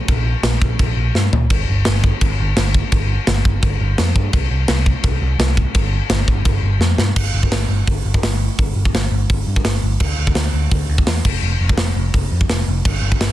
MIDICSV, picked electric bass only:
0, 0, Header, 1, 2, 480
1, 0, Start_track
1, 0, Key_signature, -2, "minor"
1, 0, Tempo, 354400
1, 122, Time_signature, 4, 2, 24, 8
1, 18042, End_track
2, 0, Start_track
2, 0, Title_t, "Picked electric bass"
2, 0, Program_c, 0, 34
2, 112, Note_on_c, 0, 34, 90
2, 428, Note_off_c, 0, 34, 0
2, 582, Note_on_c, 0, 34, 89
2, 745, Note_off_c, 0, 34, 0
2, 833, Note_on_c, 0, 34, 94
2, 992, Note_off_c, 0, 34, 0
2, 1074, Note_on_c, 0, 34, 97
2, 1232, Note_off_c, 0, 34, 0
2, 1307, Note_on_c, 0, 34, 97
2, 1467, Note_off_c, 0, 34, 0
2, 1555, Note_on_c, 0, 43, 94
2, 1713, Note_off_c, 0, 43, 0
2, 1803, Note_on_c, 0, 46, 86
2, 1958, Note_off_c, 0, 46, 0
2, 2033, Note_on_c, 0, 31, 83
2, 2191, Note_off_c, 0, 31, 0
2, 2296, Note_on_c, 0, 31, 91
2, 2446, Note_off_c, 0, 31, 0
2, 2529, Note_on_c, 0, 31, 91
2, 2838, Note_off_c, 0, 31, 0
2, 2996, Note_on_c, 0, 31, 107
2, 3152, Note_off_c, 0, 31, 0
2, 3243, Note_on_c, 0, 31, 85
2, 3396, Note_off_c, 0, 31, 0
2, 3476, Note_on_c, 0, 31, 92
2, 3789, Note_off_c, 0, 31, 0
2, 3956, Note_on_c, 0, 31, 92
2, 4268, Note_off_c, 0, 31, 0
2, 4437, Note_on_c, 0, 31, 101
2, 4592, Note_off_c, 0, 31, 0
2, 4680, Note_on_c, 0, 31, 93
2, 4833, Note_off_c, 0, 31, 0
2, 4912, Note_on_c, 0, 31, 104
2, 5068, Note_off_c, 0, 31, 0
2, 5158, Note_on_c, 0, 31, 92
2, 5312, Note_off_c, 0, 31, 0
2, 5404, Note_on_c, 0, 41, 92
2, 5555, Note_off_c, 0, 41, 0
2, 5633, Note_on_c, 0, 43, 95
2, 5788, Note_off_c, 0, 43, 0
2, 5871, Note_on_c, 0, 36, 93
2, 6027, Note_off_c, 0, 36, 0
2, 6104, Note_on_c, 0, 36, 95
2, 6262, Note_off_c, 0, 36, 0
2, 6344, Note_on_c, 0, 36, 100
2, 6659, Note_off_c, 0, 36, 0
2, 6822, Note_on_c, 0, 36, 96
2, 6980, Note_off_c, 0, 36, 0
2, 7060, Note_on_c, 0, 36, 95
2, 7219, Note_off_c, 0, 36, 0
2, 7295, Note_on_c, 0, 36, 103
2, 7611, Note_off_c, 0, 36, 0
2, 7781, Note_on_c, 0, 31, 95
2, 8096, Note_off_c, 0, 31, 0
2, 8259, Note_on_c, 0, 31, 102
2, 8417, Note_off_c, 0, 31, 0
2, 8500, Note_on_c, 0, 31, 97
2, 8658, Note_off_c, 0, 31, 0
2, 8736, Note_on_c, 0, 31, 87
2, 8895, Note_off_c, 0, 31, 0
2, 8978, Note_on_c, 0, 31, 81
2, 9137, Note_off_c, 0, 31, 0
2, 9200, Note_on_c, 0, 41, 92
2, 9364, Note_off_c, 0, 41, 0
2, 9456, Note_on_c, 0, 43, 95
2, 9615, Note_off_c, 0, 43, 0
2, 9703, Note_on_c, 0, 31, 84
2, 9858, Note_off_c, 0, 31, 0
2, 9942, Note_on_c, 0, 31, 85
2, 10098, Note_off_c, 0, 31, 0
2, 10178, Note_on_c, 0, 31, 86
2, 10335, Note_off_c, 0, 31, 0
2, 10412, Note_on_c, 0, 31, 83
2, 10571, Note_off_c, 0, 31, 0
2, 10667, Note_on_c, 0, 31, 91
2, 10822, Note_off_c, 0, 31, 0
2, 10905, Note_on_c, 0, 31, 83
2, 11061, Note_off_c, 0, 31, 0
2, 11142, Note_on_c, 0, 31, 85
2, 11454, Note_off_c, 0, 31, 0
2, 11628, Note_on_c, 0, 31, 98
2, 11783, Note_off_c, 0, 31, 0
2, 11862, Note_on_c, 0, 31, 86
2, 12019, Note_off_c, 0, 31, 0
2, 12100, Note_on_c, 0, 31, 89
2, 12258, Note_off_c, 0, 31, 0
2, 12344, Note_on_c, 0, 31, 92
2, 12501, Note_off_c, 0, 31, 0
2, 12594, Note_on_c, 0, 31, 94
2, 12748, Note_off_c, 0, 31, 0
2, 12825, Note_on_c, 0, 43, 79
2, 12982, Note_off_c, 0, 43, 0
2, 13067, Note_on_c, 0, 31, 84
2, 13224, Note_off_c, 0, 31, 0
2, 13315, Note_on_c, 0, 31, 96
2, 13469, Note_off_c, 0, 31, 0
2, 13553, Note_on_c, 0, 38, 93
2, 13708, Note_off_c, 0, 38, 0
2, 13791, Note_on_c, 0, 38, 89
2, 13947, Note_off_c, 0, 38, 0
2, 14020, Note_on_c, 0, 38, 102
2, 14180, Note_off_c, 0, 38, 0
2, 14265, Note_on_c, 0, 38, 91
2, 14423, Note_off_c, 0, 38, 0
2, 14512, Note_on_c, 0, 38, 95
2, 14668, Note_off_c, 0, 38, 0
2, 14752, Note_on_c, 0, 38, 99
2, 14908, Note_off_c, 0, 38, 0
2, 14993, Note_on_c, 0, 40, 94
2, 15149, Note_off_c, 0, 40, 0
2, 15236, Note_on_c, 0, 29, 103
2, 15391, Note_off_c, 0, 29, 0
2, 15473, Note_on_c, 0, 29, 85
2, 15630, Note_off_c, 0, 29, 0
2, 15720, Note_on_c, 0, 29, 87
2, 15874, Note_off_c, 0, 29, 0
2, 15954, Note_on_c, 0, 29, 84
2, 16111, Note_off_c, 0, 29, 0
2, 16199, Note_on_c, 0, 29, 80
2, 16354, Note_off_c, 0, 29, 0
2, 16439, Note_on_c, 0, 29, 92
2, 16595, Note_off_c, 0, 29, 0
2, 16682, Note_on_c, 0, 41, 97
2, 16836, Note_off_c, 0, 41, 0
2, 16924, Note_on_c, 0, 29, 88
2, 17078, Note_off_c, 0, 29, 0
2, 17170, Note_on_c, 0, 29, 86
2, 17323, Note_off_c, 0, 29, 0
2, 17412, Note_on_c, 0, 31, 98
2, 17564, Note_off_c, 0, 31, 0
2, 17627, Note_on_c, 0, 31, 94
2, 17787, Note_off_c, 0, 31, 0
2, 17886, Note_on_c, 0, 31, 90
2, 18040, Note_off_c, 0, 31, 0
2, 18042, End_track
0, 0, End_of_file